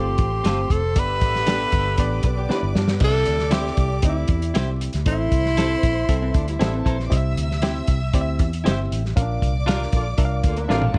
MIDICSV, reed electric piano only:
0, 0, Header, 1, 2, 480
1, 0, Start_track
1, 0, Key_signature, 0, "major"
1, 0, Tempo, 512821
1, 900, Time_signature, 4, 2, 24, 8
1, 10280, End_track
2, 0, Start_track
2, 0, Title_t, "Reed electric piano"
2, 0, Program_c, 0, 4
2, 0, Note_on_c, 0, 57, 71
2, 0, Note_on_c, 0, 60, 66
2, 0, Note_on_c, 0, 65, 73
2, 0, Note_on_c, 0, 72, 83
2, 280, Note_off_c, 0, 57, 0
2, 280, Note_off_c, 0, 60, 0
2, 283, Note_off_c, 0, 65, 0
2, 285, Note_off_c, 0, 72, 0
2, 412, Note_on_c, 0, 57, 74
2, 417, Note_on_c, 0, 60, 71
2, 420, Note_on_c, 0, 65, 67
2, 421, Note_on_c, 0, 72, 85
2, 756, Note_off_c, 0, 57, 0
2, 759, Note_off_c, 0, 60, 0
2, 760, Note_off_c, 0, 65, 0
2, 760, Note_off_c, 0, 72, 0
2, 893, Note_on_c, 0, 59, 71
2, 894, Note_on_c, 0, 62, 63
2, 897, Note_on_c, 0, 43, 63
2, 898, Note_on_c, 0, 67, 66
2, 902, Note_on_c, 0, 74, 84
2, 1236, Note_off_c, 0, 59, 0
2, 1237, Note_off_c, 0, 62, 0
2, 1239, Note_off_c, 0, 67, 0
2, 1241, Note_off_c, 0, 74, 0
2, 1383, Note_on_c, 0, 58, 59
2, 1383, Note_on_c, 0, 67, 68
2, 1387, Note_on_c, 0, 62, 68
2, 1393, Note_on_c, 0, 74, 79
2, 1439, Note_off_c, 0, 58, 0
2, 1440, Note_on_c, 0, 59, 71
2, 1581, Note_off_c, 0, 43, 0
2, 1721, Note_off_c, 0, 67, 0
2, 1723, Note_off_c, 0, 62, 0
2, 1726, Note_off_c, 0, 74, 0
2, 1750, Note_off_c, 0, 59, 0
2, 1858, Note_on_c, 0, 62, 82
2, 1861, Note_on_c, 0, 59, 87
2, 1862, Note_on_c, 0, 67, 79
2, 1868, Note_on_c, 0, 74, 99
2, 2199, Note_off_c, 0, 62, 0
2, 2200, Note_off_c, 0, 59, 0
2, 2201, Note_off_c, 0, 67, 0
2, 2204, Note_off_c, 0, 74, 0
2, 2333, Note_on_c, 0, 59, 88
2, 2334, Note_on_c, 0, 62, 79
2, 2337, Note_on_c, 0, 67, 85
2, 2337, Note_on_c, 0, 72, 78
2, 2396, Note_off_c, 0, 72, 0
2, 2396, Note_on_c, 0, 74, 93
2, 2676, Note_off_c, 0, 59, 0
2, 2677, Note_off_c, 0, 62, 0
2, 2678, Note_off_c, 0, 67, 0
2, 2708, Note_off_c, 0, 74, 0
2, 2810, Note_on_c, 0, 48, 62
2, 2810, Note_on_c, 0, 60, 69
2, 2810, Note_on_c, 0, 67, 64
2, 2811, Note_on_c, 0, 64, 60
2, 2815, Note_on_c, 0, 75, 62
2, 2875, Note_off_c, 0, 75, 0
2, 2875, Note_on_c, 0, 76, 77
2, 3154, Note_off_c, 0, 67, 0
2, 3155, Note_off_c, 0, 60, 0
2, 3155, Note_off_c, 0, 64, 0
2, 3187, Note_off_c, 0, 76, 0
2, 3291, Note_on_c, 0, 60, 78
2, 3297, Note_on_c, 0, 67, 66
2, 3298, Note_on_c, 0, 64, 65
2, 3299, Note_on_c, 0, 76, 86
2, 3497, Note_off_c, 0, 48, 0
2, 3635, Note_off_c, 0, 60, 0
2, 3638, Note_off_c, 0, 64, 0
2, 3638, Note_off_c, 0, 67, 0
2, 3639, Note_off_c, 0, 76, 0
2, 3768, Note_on_c, 0, 60, 78
2, 3769, Note_on_c, 0, 67, 69
2, 3772, Note_on_c, 0, 64, 72
2, 3775, Note_on_c, 0, 75, 67
2, 3832, Note_on_c, 0, 76, 82
2, 3835, Note_off_c, 0, 75, 0
2, 4113, Note_off_c, 0, 60, 0
2, 4114, Note_off_c, 0, 67, 0
2, 4115, Note_off_c, 0, 64, 0
2, 4145, Note_off_c, 0, 76, 0
2, 4255, Note_on_c, 0, 64, 65
2, 4257, Note_on_c, 0, 60, 75
2, 4260, Note_on_c, 0, 67, 72
2, 4260, Note_on_c, 0, 76, 83
2, 4596, Note_off_c, 0, 64, 0
2, 4598, Note_off_c, 0, 60, 0
2, 4599, Note_off_c, 0, 67, 0
2, 4599, Note_off_c, 0, 76, 0
2, 4734, Note_on_c, 0, 64, 65
2, 4739, Note_on_c, 0, 60, 70
2, 4739, Note_on_c, 0, 75, 67
2, 4740, Note_on_c, 0, 45, 61
2, 4740, Note_on_c, 0, 69, 65
2, 4797, Note_off_c, 0, 75, 0
2, 4798, Note_on_c, 0, 76, 76
2, 5076, Note_off_c, 0, 64, 0
2, 5078, Note_off_c, 0, 60, 0
2, 5079, Note_off_c, 0, 69, 0
2, 5108, Note_off_c, 0, 76, 0
2, 5218, Note_on_c, 0, 64, 64
2, 5222, Note_on_c, 0, 60, 72
2, 5225, Note_on_c, 0, 69, 66
2, 5225, Note_on_c, 0, 76, 86
2, 5422, Note_off_c, 0, 45, 0
2, 5558, Note_off_c, 0, 64, 0
2, 5560, Note_off_c, 0, 60, 0
2, 5562, Note_off_c, 0, 69, 0
2, 5562, Note_off_c, 0, 76, 0
2, 5698, Note_on_c, 0, 60, 90
2, 5699, Note_on_c, 0, 64, 85
2, 5699, Note_on_c, 0, 69, 86
2, 5702, Note_on_c, 0, 76, 102
2, 6038, Note_off_c, 0, 60, 0
2, 6039, Note_off_c, 0, 64, 0
2, 6039, Note_off_c, 0, 69, 0
2, 6040, Note_off_c, 0, 76, 0
2, 6171, Note_on_c, 0, 60, 91
2, 6174, Note_on_c, 0, 64, 84
2, 6180, Note_on_c, 0, 69, 83
2, 6182, Note_on_c, 0, 75, 81
2, 6236, Note_on_c, 0, 76, 104
2, 6238, Note_off_c, 0, 75, 0
2, 6514, Note_off_c, 0, 60, 0
2, 6516, Note_off_c, 0, 64, 0
2, 6519, Note_off_c, 0, 69, 0
2, 6547, Note_off_c, 0, 76, 0
2, 6644, Note_on_c, 0, 60, 90
2, 6648, Note_on_c, 0, 64, 80
2, 6650, Note_on_c, 0, 48, 76
2, 6650, Note_on_c, 0, 67, 78
2, 6652, Note_on_c, 0, 75, 77
2, 6709, Note_on_c, 0, 76, 93
2, 6713, Note_off_c, 0, 75, 0
2, 6991, Note_off_c, 0, 60, 0
2, 6993, Note_off_c, 0, 64, 0
2, 6994, Note_off_c, 0, 67, 0
2, 7024, Note_off_c, 0, 76, 0
2, 7136, Note_on_c, 0, 64, 79
2, 7140, Note_on_c, 0, 60, 90
2, 7144, Note_on_c, 0, 67, 79
2, 7144, Note_on_c, 0, 76, 97
2, 7336, Note_off_c, 0, 48, 0
2, 7477, Note_off_c, 0, 64, 0
2, 7479, Note_off_c, 0, 60, 0
2, 7481, Note_off_c, 0, 67, 0
2, 7481, Note_off_c, 0, 76, 0
2, 7619, Note_on_c, 0, 60, 96
2, 7620, Note_on_c, 0, 64, 83
2, 7627, Note_on_c, 0, 74, 85
2, 7628, Note_on_c, 0, 67, 86
2, 7680, Note_off_c, 0, 74, 0
2, 7687, Note_on_c, 0, 76, 103
2, 7958, Note_off_c, 0, 60, 0
2, 7959, Note_off_c, 0, 64, 0
2, 7963, Note_off_c, 0, 67, 0
2, 7992, Note_off_c, 0, 76, 0
2, 8096, Note_on_c, 0, 60, 88
2, 8096, Note_on_c, 0, 64, 80
2, 8098, Note_on_c, 0, 67, 86
2, 8098, Note_on_c, 0, 75, 82
2, 8156, Note_off_c, 0, 75, 0
2, 8158, Note_on_c, 0, 76, 98
2, 8437, Note_off_c, 0, 60, 0
2, 8437, Note_off_c, 0, 64, 0
2, 8438, Note_off_c, 0, 67, 0
2, 8468, Note_off_c, 0, 76, 0
2, 8571, Note_on_c, 0, 61, 72
2, 8575, Note_on_c, 0, 46, 76
2, 8575, Note_on_c, 0, 65, 76
2, 8577, Note_on_c, 0, 70, 79
2, 8581, Note_on_c, 0, 77, 95
2, 8632, Note_on_c, 0, 62, 86
2, 8633, Note_off_c, 0, 61, 0
2, 8917, Note_off_c, 0, 65, 0
2, 8917, Note_off_c, 0, 70, 0
2, 8919, Note_off_c, 0, 77, 0
2, 8945, Note_off_c, 0, 62, 0
2, 9053, Note_on_c, 0, 62, 87
2, 9053, Note_on_c, 0, 65, 84
2, 9057, Note_on_c, 0, 70, 82
2, 9058, Note_on_c, 0, 77, 100
2, 9260, Note_off_c, 0, 46, 0
2, 9395, Note_off_c, 0, 65, 0
2, 9396, Note_off_c, 0, 62, 0
2, 9398, Note_off_c, 0, 70, 0
2, 9398, Note_off_c, 0, 77, 0
2, 9526, Note_on_c, 0, 62, 89
2, 9527, Note_on_c, 0, 65, 80
2, 9529, Note_on_c, 0, 70, 83
2, 9529, Note_on_c, 0, 76, 82
2, 9592, Note_off_c, 0, 76, 0
2, 9595, Note_on_c, 0, 77, 100
2, 9872, Note_off_c, 0, 62, 0
2, 9873, Note_off_c, 0, 65, 0
2, 9873, Note_off_c, 0, 70, 0
2, 9906, Note_off_c, 0, 77, 0
2, 10000, Note_on_c, 0, 62, 91
2, 10001, Note_on_c, 0, 70, 79
2, 10002, Note_on_c, 0, 65, 83
2, 10008, Note_on_c, 0, 76, 75
2, 10059, Note_on_c, 0, 77, 99
2, 10071, Note_off_c, 0, 76, 0
2, 10280, Note_off_c, 0, 62, 0
2, 10280, Note_off_c, 0, 65, 0
2, 10280, Note_off_c, 0, 70, 0
2, 10280, Note_off_c, 0, 77, 0
2, 10280, End_track
0, 0, End_of_file